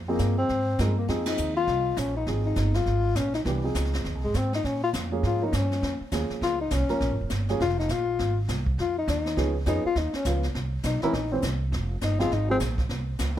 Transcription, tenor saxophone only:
0.09 0.36 A#3 medium
0.38 0.83 C4 medium
0.81 0.97 G#3 medium
0.97 1.08 A#3 medium
1.27 1.54 D#4 medium
1.57 2.00 F4 medium
1.98 2.16 C#4 medium
2.16 2.27 D#4 medium
2.46 2.77 D#4 medium
2.76 3.18 F4 medium
3.17 3.34 C#4 medium
3.35 3.41 D#4 medium
4.24 4.38 G#3 medium
4.37 4.54 C4 medium
4.55 4.67 D#4 medium
4.65 4.83 C#4 medium
4.84 4.90 F4 medium
5.26 5.46 F4 medium
5.44 5.57 D#4 medium
5.55 6.02 C#4 medium
6.43 6.59 F4 medium
6.61 6.74 D#4 medium
6.73 7.20 C#4 medium
7.62 7.78 F4 medium
7.79 7.93 D#4 medium
7.91 8.38 F4 medium
8.81 8.96 F4 medium
8.98 9.08 D#4 medium
9.10 9.53 D#4 medium
9.68 9.84 D#4 medium
9.86 9.99 F4 medium
9.98 10.17 D#4 medium
10.16 10.26 C#4 medium
10.85 11.02 D#4 medium
11.02 11.16 E4 medium
11.15 11.34 D#4 medium
11.32 11.44 C4 medium
12.04 12.20 D#4 medium
12.20 12.35 F4 medium
12.34 12.50 D#4 medium
12.51 12.57 C4 medium

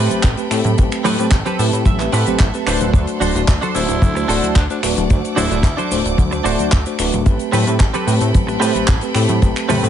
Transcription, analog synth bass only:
0.11 0.21 A1 soft
0.24 0.36 A1 loud
0.51 0.62 A2 medium
0.64 0.76 A2 medium
0.79 0.90 A1 loud
1.05 1.16 A2 loud
1.19 1.30 A2 medium
1.31 1.43 A1 medium
1.59 1.71 A2 loud
1.73 1.84 A2 medium
1.85 2.09 A1 medium
2.13 2.25 A2 medium
2.27 2.37 A1 soft
2.40 2.52 A1 loud
2.67 2.79 D1 medium
2.81 2.92 D1 medium
2.93 3.05 D2 loud
3.20 3.32 D1 loud
3.35 3.46 D1 medium
3.48 3.60 D2 medium
3.75 3.87 D1 loud
3.89 4.00 D1 medium
4.02 4.25 D2 medium
4.29 4.41 D1 medium
4.56 4.68 D2 loud
4.83 4.95 D1 medium
4.97 5.08 D1 medium
5.10 5.22 D2 loud
5.37 5.49 D1 loud
5.51 5.62 D1 medium
5.63 5.75 D2 medium
5.91 6.03 D1 loud
6.06 6.16 D1 medium
6.18 6.41 D2 medium
6.45 6.57 D1 medium
6.59 6.70 D2 soft
6.73 6.84 D2 loud
6.99 7.11 D1 loud
7.13 7.24 D1 medium
7.26 7.38 A1 loud
7.53 7.65 A2 loud
7.67 7.78 A2 medium
7.80 7.92 A1 medium
8.07 8.19 A2 loud
8.21 8.32 A2 medium
8.35 8.57 A1 medium
8.61 8.73 A2 medium
8.75 8.86 A1 soft
8.88 9.00 A1 loud
9.15 9.27 A2 loud
9.29 9.40 A2 medium
9.42 9.54 A1 loud
9.69 9.81 A2 loud
9.83 9.89 A2 medium

